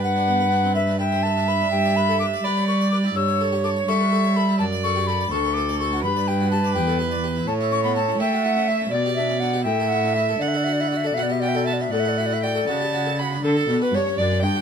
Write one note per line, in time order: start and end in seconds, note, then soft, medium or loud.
0.00 1.68 G2 soft
0.00 1.68 G2 medium
0.00 1.00 B4 medium
0.00 0.75 F#5 medium
0.04 0.17 B4 soft
0.16 0.29 D4 soft
0.28 0.41 B3 soft
0.40 0.53 B4 soft
0.52 0.65 D4 soft
0.64 0.76 C4 soft
0.75 0.88 B4 soft
0.75 0.99 E5 medium
0.87 1.00 D4 soft
0.99 1.13 B4 soft
0.99 2.45 E5 medium
0.99 1.25 G5 medium
1.12 1.24 C5 soft
1.23 1.37 B4 soft
1.23 1.50 A5 medium
1.37 1.49 D4 soft
1.48 1.61 B4 soft
1.48 1.70 B5 medium
1.61 1.73 D4 soft
1.71 2.39 G2 medium
1.71 2.40 G2 medium
1.71 1.98 G5 medium
1.85 1.97 D5 soft
1.96 2.09 B4 soft
1.96 2.19 B5 medium
2.09 2.20 A4 soft
2.20 2.33 B4 soft
2.20 2.26 D6 medium
2.34 2.45 D5 soft
2.43 3.14 G3 medium
2.43 3.12 G3 medium
2.43 2.57 B4 soft
2.43 3.17 D5 medium
2.43 2.67 B5 medium
2.57 2.68 C#5 soft
2.68 2.80 B4 soft
2.68 2.90 C#6 medium
2.81 2.93 D5 soft
2.91 3.05 B4 soft
2.91 2.97 D6 medium
3.04 3.16 E4 soft
3.15 3.86 G2 medium
3.15 3.84 G2 medium
3.15 3.90 C#5 medium
3.15 3.42 E6 medium
3.28 3.41 C#5 soft
3.41 3.53 A4 soft
3.52 3.64 G4 soft
3.64 3.76 A4 soft
3.64 3.70 D6 medium
3.76 3.89 C#5 soft
3.87 4.61 G3 medium
3.87 4.56 G3 medium
3.87 4.01 A4 soft
3.87 4.60 E5 medium
3.87 4.38 C#6 medium
4.01 4.12 B4 soft
4.12 4.24 A4 soft
4.24 4.36 C#5 soft
4.36 4.49 A4 soft
4.36 4.58 B5 medium
4.49 4.60 E4 soft
4.59 5.27 F#2 soft
4.59 5.31 F#2 medium
4.59 5.30 D5 medium
4.59 4.65 A5 medium
4.72 4.84 D5 soft
4.84 4.96 A4 soft
4.84 5.09 C#6 medium
4.96 5.07 G4 soft
5.07 5.20 A4 soft
5.07 5.33 B5 medium
5.21 5.32 D5 soft
5.31 6.05 D2 medium
5.31 5.99 D2 medium
5.31 6.04 A4 medium
5.31 5.44 A4 soft
5.31 5.55 C#6 medium
5.44 5.56 B4 soft
5.54 5.68 A4 soft
5.54 5.78 D6 medium
5.69 5.80 D5 soft
5.79 5.92 A4 soft
5.79 6.03 C#6 medium
5.93 6.04 F#4 soft
6.03 6.76 G2 medium
6.03 6.71 G2 medium
6.03 7.48 B4 medium
6.03 6.29 B5 medium
6.16 6.28 D5 soft
6.28 6.40 G4 soft
6.28 6.51 G5 medium
6.40 6.51 F#4 soft
6.51 6.64 G4 medium
6.51 6.74 A5 medium
6.64 6.76 D5 soft
6.74 7.46 E2 medium
6.74 7.43 E2 medium
6.74 6.87 G4 soft
6.74 6.98 G5 medium
6.87 6.99 A4 soft
6.99 7.11 G4 medium
7.11 7.23 D5 soft
7.24 7.36 G4 soft
7.36 7.47 E4 soft
7.47 8.18 A2 medium
7.47 8.16 A2 medium
7.47 8.21 C#5 medium
7.47 7.54 A5 medium
7.61 7.72 E4 soft
7.71 7.84 C#4 soft
7.71 7.83 C#6 medium
7.84 7.96 B3 soft
7.84 7.95 B5 medium
7.96 8.08 E4 soft
7.96 8.19 A5 medium
8.08 8.20 C#4 soft
8.19 8.90 A3 medium
8.19 8.88 A3 medium
8.19 8.32 E4 soft
8.19 8.93 E5 medium
8.19 8.47 G5 medium
8.33 8.44 F#4 soft
8.44 8.56 E4 soft
8.44 8.70 F#5 medium
8.56 8.68 C#4 soft
8.68 8.81 E4 soft
8.68 8.91 E5 medium
8.81 8.92 C#4 soft
8.91 9.67 B2 medium
8.91 9.62 B2 medium
8.91 9.15 D5 medium
8.91 9.65 D5 medium
9.06 9.18 G4 soft
9.16 9.30 D4 soft
9.16 9.42 E5 medium
9.29 9.41 C#4 soft
9.40 9.54 D4 soft
9.40 9.64 F#5 medium
9.53 9.66 G4 soft
9.65 10.40 A2 medium
9.65 10.37 A2 soft
9.65 10.42 E5 medium
9.65 9.90 G5 medium
9.80 9.92 A4 soft
9.89 10.04 E4 soft
9.89 10.16 F#5 medium
10.04 10.16 D4 soft
10.14 10.29 E4 soft
10.14 10.41 E5 medium
10.29 10.41 A4 soft
10.39 11.15 D3 medium
10.39 11.13 D3 soft
10.39 10.49 D5 medium
10.39 11.11 F#5 medium
10.48 10.59 E5 medium
10.54 10.67 A4 soft
10.54 10.66 D5 medium
10.64 10.79 F#4 soft
10.64 10.74 E5 medium
10.73 10.82 D5 medium
10.80 10.92 E4 soft
10.80 10.90 E5 medium
10.88 10.98 D5 medium
10.92 11.05 F#4 soft
10.97 11.08 E5 medium
11.04 11.17 A4 soft
11.04 11.16 D5 medium
11.14 11.90 B2 medium
11.14 11.88 B2 soft
11.14 11.30 F#4 soft
11.14 11.24 E5 medium
11.14 11.24 F#5 medium
11.23 11.33 D5 medium
11.30 11.42 G4 soft
11.30 11.42 E5 medium
11.40 11.55 F#4 soft
11.40 11.50 D5 medium
11.40 11.66 G5 medium
11.48 11.58 E5 medium
11.55 11.68 A4 soft
11.55 11.66 D5 medium
11.65 11.80 F#4 soft
11.65 11.75 E5 medium
11.65 11.75 A5 medium
11.73 11.83 D5 medium
11.80 11.93 D4 soft
11.80 11.93 E5 soft
11.91 12.67 A2 medium
11.91 12.64 A2 soft
11.91 12.06 A3 soft
11.91 12.01 D5 medium
11.91 12.42 F#5 medium
12.00 12.10 E5 medium
12.05 12.18 A4 soft
12.05 12.19 D5 medium
12.18 12.31 F#4 soft
12.18 12.28 E5 medium
12.26 12.35 D5 medium
12.31 12.43 E4 soft
12.31 12.45 E5 soft
12.43 12.56 F#4 soft
12.43 13.20 D5 medium
12.43 12.68 G5 medium
12.55 12.68 A4 soft
12.68 13.39 C#3 soft
12.68 13.42 C#3 medium
12.68 12.81 F#4 soft
12.68 13.20 A5 medium
12.81 12.94 G4 soft
12.94 13.07 F#4 soft
13.06 13.20 A4 soft
13.19 13.32 F#4 soft
13.19 13.44 B5 medium
13.32 13.44 D4 soft
13.43 13.66 D3 medium
13.43 13.84 A4 medium
13.43 13.79 A4 medium
13.57 13.69 A4 soft
13.67 13.75 B2 medium
13.67 13.91 B2 medium
13.67 13.82 D4 soft
13.82 13.94 F#4 soft
13.82 13.96 B4 medium
13.92 14.00 G2 medium
13.92 14.16 G2 soft
13.92 14.07 D4 soft
13.92 14.19 C#5 medium
13.92 14.18 C#5 medium
14.06 14.18 C#4 soft
14.17 14.43 F#2 medium
14.17 14.41 F#2 medium
14.17 14.31 D4 soft
14.17 14.41 D5 medium
14.17 14.45 D5 medium
14.31 14.43 C#4 soft
14.42 14.62 G2 medium
14.42 14.55 D4 soft
14.42 14.62 G5 medium
14.55 14.62 F#4 soft